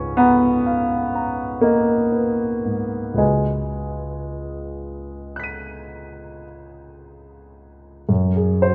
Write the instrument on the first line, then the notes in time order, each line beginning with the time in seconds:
grand piano
Already playing: C#2 G#2 C#4 B4
0.17 B3 A#5
0.66 F5
1.15 A#5
1.61 A#3 D#5
2.12 B4
2.65 G#2
3.14 C#2 G#3 F#4 B4 D#5
3.19 G#5
5.36 F#6 B6
5.44 D#7
8.09 F#2
8.36 G#4
8.62 F#4 C5